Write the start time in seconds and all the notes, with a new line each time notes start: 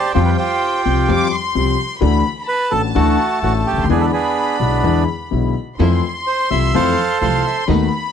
Already playing: G4 C5 D5 A5
0.14 F2 F3 G3 C4 F4 G4 C5 G5
0.25 B4
0.37 F4 G4 C5
0.86 C2 C3 F3 G3 C4 G4
1.08 F2 F3 G3 C4 G4 D6
1.31 C6
1.55 C2 C3 F3 G3 C4 G4
2.01 D2 D3 E3 A3 D4 F#4 B5
2.42 B5
2.48 B4 A5
2.71 A1 A2 E3 A3 D4 F#4 A4
2.95 D2 D3 E3 A3 D4 F#4
3.42 A1 A2 E3 A3 D4 F#4
3.67 G4
3.72 C#2
3.78 D2
3.84 D#2 C6
3.89 E2 D3 E3 G#3 B3 D4 E4 G#4 B5
4.01 A4
4.13 B3 D4 G#4
4.60 B1 B2 D3 G#3 B3 E4
4.83 E2 D3 E3 G#3 B3 E4
5.31 B1 B2 D3 G#3 B3 E4
5.79 F2 E3 F3 A3 C4 E4 F4 C6
6.27 C5
6.50 C2 C3 E3 F3 A3 C4 E4 F4 E5
6.74 F2 E3 F3 A3 C4 E4 F4 A4 C5 F5
7.21 C2 C3 E3 F3 A3 C4 E4 F4 F5 C6
7.47 E5
7.68 D#2 D#3 A3 B3 D#4 F#4 B5